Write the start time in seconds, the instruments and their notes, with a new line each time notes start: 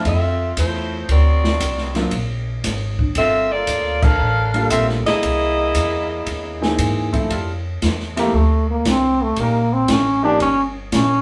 0.05 upright bass F2, saxophone section C4 F4 A4 E5, kick, ride
0.57 upright bass E2, saxophone section A3 E4 F4 C5, kick, hi-hat pedal, ride
1.09 upright bass D2, saxophone section C4 F#4 A#4 D5, kick, ride
1.44 snare
1.60 upright bass C2, kick, hi-hat pedal, ride
1.78 snare
1.95 grand piano F#3 A#3 C4 D4 F4, snare, ride
2.11 upright bass A#1, kick, ride
2.64 upright bass G#1, kick, snare, hi-hat pedal, ride
2.99 kick
3.15 upright bass G1, saxophone section C4 F4 A4 E5, kick, ride
3.52 saxophone section A#3 F4 A4 D5
3.67 upright bass D2, kick, hi-hat pedal, ride
4.02 saxophone section D4 A4 A#4 F5, kick, crash
4.20 upright bass A1
4.54 grand piano G3 A#3 D4 F4 A4, ride
4.70 upright bass A#1, saxophone section C4 F4 A4 E5, kick, hi-hat pedal, ride
4.89 snare
5.06 saxophone section A#3 E4 G#4 D#5, snare, ride
5.23 upright bass C2, kick, ride
5.75 upright bass E2, kick, hi-hat pedal, ride
6.26 upright bass D#2, kick, ride
6.61 grand piano E3 A#3 C4 D#4 G#4, snare
6.78 upright bass G#2, kick, hi-hat pedal, ride
7.12 grand piano F3 A3 C4 E4 A4, kick, ride
7.29 upright bass F2, trombone section G3 E4 F4 A4, kick, ride
7.82 upright bass E2, kick, snare, hi-hat pedal, ride
8.00 snare
8.16 grand piano F3 A3 C4 E4 G4, trombone A#3, snare, ride
8.34 upright bass D2, trombone A3, kick
8.71 trombone A#3
8.85 upright bass C2, trombone C4, kick, snare, hi-hat pedal, ride
9.22 trombone A3
9.36 upright bass A#1, trombone section G3 C#4 D#4 A#4, trombone A#3, kick, ride
9.73 trombone C4
9.88 upright bass A1, trombone C#4, kick, snare, hi-hat pedal, ride
10.23 grand piano F3 A#3 C#4 D#4 G4, trombone D4
10.40 upright bass G1, trombone C#4, kick, ride
10.92 upright bass A#1, trombone C#4, kick, snare, hi-hat pedal, ride